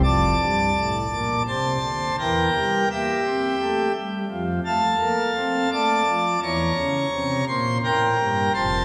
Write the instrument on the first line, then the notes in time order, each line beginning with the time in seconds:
pipe organ
0.04 F1 F2 D5 A5 D6
0.41 G2
0.77 A2
1.12 A#2
1.47 C3 C5 A5 C6
1.83 D3
2.19 E2 E3 A#4 G5 A#5
2.54 G3
2.91 A#3 G4 E5 G5
3.26 C4
3.61 A3
3.96 G3
4.31 F2 F3
4.66 A3 A4 F5 A5
5.00 A#3
5.36 C4
5.72 A3 D5 A5 D6
6.08 F3
6.43 E2 E3 C#5 A#5 C#6
6.77 C#3
7.13 C3
7.48 A#2 C5 C6
7.84 A2 A#4 G5 A#5
8.19 G2
8.54 F1 F2 C5 A5 C6